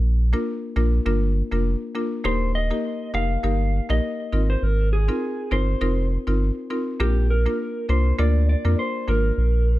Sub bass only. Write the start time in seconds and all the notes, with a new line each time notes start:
Already playing: A#1
0.76 A#1
1.06 G1
1.52 F1
2.25 D#1
3.14 F1
3.44 G1
3.90 A#1
4.33 G#1
4.62 G#1
5.52 G1
5.81 F1
6.27 G1
7.00 A#1
7.89 C2
8.19 D2
8.65 F2
9.08 G#1
9.38 A#1